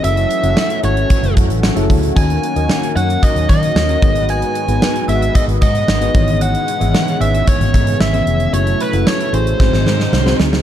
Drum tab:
HH |xxxx-xxxxxxx-xox|xxxx-xxxxxxx-xxx|xxxx-xxxxxxx-xxx|xxxx-xxxxxxx-xxx|
TB |----x-------x---|----x-------x---|----x-------x---|----x-------x---|
SD |----o-------o---|----o-------o---|----o-------o---|----o-------o---|
BD |--------o-o---o-|o-------o-o---o-|--------o-o---o-|--------o-o-----|

HH |xxxx-xxx--------|
TB |----x-----------|
SD |----o---oooooooo|
BD |--------o-------|